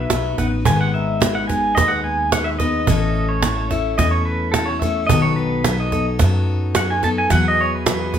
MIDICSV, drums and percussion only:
0, 0, Header, 1, 2, 480
1, 0, Start_track
1, 0, Tempo, 554529
1, 569, Time_signature, 4, 2, 24, 8
1, 7088, End_track
2, 0, Start_track
2, 0, Title_t, "Cajon"
2, 87, Note_on_c, 9, 38, 101
2, 174, Note_off_c, 9, 38, 0
2, 330, Note_on_c, 9, 36, 71
2, 330, Note_on_c, 9, 38, 30
2, 417, Note_off_c, 9, 36, 0
2, 417, Note_off_c, 9, 38, 0
2, 566, Note_on_c, 9, 36, 95
2, 653, Note_off_c, 9, 36, 0
2, 812, Note_on_c, 9, 38, 27
2, 898, Note_off_c, 9, 38, 0
2, 1053, Note_on_c, 9, 38, 101
2, 1139, Note_off_c, 9, 38, 0
2, 1295, Note_on_c, 9, 36, 70
2, 1295, Note_on_c, 9, 38, 30
2, 1381, Note_off_c, 9, 36, 0
2, 1381, Note_off_c, 9, 38, 0
2, 1536, Note_on_c, 9, 36, 96
2, 1536, Note_on_c, 9, 38, 29
2, 1623, Note_off_c, 9, 36, 0
2, 1623, Note_off_c, 9, 38, 0
2, 2010, Note_on_c, 9, 38, 103
2, 2096, Note_off_c, 9, 38, 0
2, 2248, Note_on_c, 9, 36, 71
2, 2248, Note_on_c, 9, 38, 29
2, 2335, Note_off_c, 9, 36, 0
2, 2335, Note_off_c, 9, 38, 0
2, 2487, Note_on_c, 9, 36, 87
2, 2573, Note_off_c, 9, 36, 0
2, 2721, Note_on_c, 9, 38, 27
2, 2808, Note_off_c, 9, 38, 0
2, 2965, Note_on_c, 9, 38, 102
2, 3051, Note_off_c, 9, 38, 0
2, 3208, Note_on_c, 9, 36, 70
2, 3208, Note_on_c, 9, 38, 29
2, 3295, Note_off_c, 9, 36, 0
2, 3295, Note_off_c, 9, 38, 0
2, 3452, Note_on_c, 9, 36, 98
2, 3452, Note_on_c, 9, 38, 30
2, 3538, Note_off_c, 9, 36, 0
2, 3538, Note_off_c, 9, 38, 0
2, 3928, Note_on_c, 9, 38, 94
2, 4014, Note_off_c, 9, 38, 0
2, 4171, Note_on_c, 9, 36, 68
2, 4171, Note_on_c, 9, 38, 28
2, 4258, Note_off_c, 9, 36, 0
2, 4258, Note_off_c, 9, 38, 0
2, 4409, Note_on_c, 9, 36, 91
2, 4496, Note_off_c, 9, 36, 0
2, 4648, Note_on_c, 9, 38, 29
2, 4734, Note_off_c, 9, 38, 0
2, 4886, Note_on_c, 9, 38, 91
2, 4972, Note_off_c, 9, 38, 0
2, 5126, Note_on_c, 9, 36, 66
2, 5126, Note_on_c, 9, 38, 29
2, 5213, Note_off_c, 9, 36, 0
2, 5213, Note_off_c, 9, 38, 0
2, 5362, Note_on_c, 9, 36, 95
2, 5362, Note_on_c, 9, 38, 29
2, 5448, Note_off_c, 9, 36, 0
2, 5448, Note_off_c, 9, 38, 0
2, 5841, Note_on_c, 9, 38, 95
2, 5928, Note_off_c, 9, 38, 0
2, 6083, Note_on_c, 9, 36, 62
2, 6083, Note_on_c, 9, 38, 25
2, 6170, Note_off_c, 9, 36, 0
2, 6170, Note_off_c, 9, 38, 0
2, 6322, Note_on_c, 9, 36, 87
2, 6322, Note_on_c, 9, 38, 26
2, 6408, Note_off_c, 9, 36, 0
2, 6408, Note_off_c, 9, 38, 0
2, 6807, Note_on_c, 9, 38, 95
2, 6894, Note_off_c, 9, 38, 0
2, 7043, Note_on_c, 9, 36, 65
2, 7043, Note_on_c, 9, 38, 26
2, 7088, Note_off_c, 9, 36, 0
2, 7088, Note_off_c, 9, 38, 0
2, 7088, End_track
0, 0, End_of_file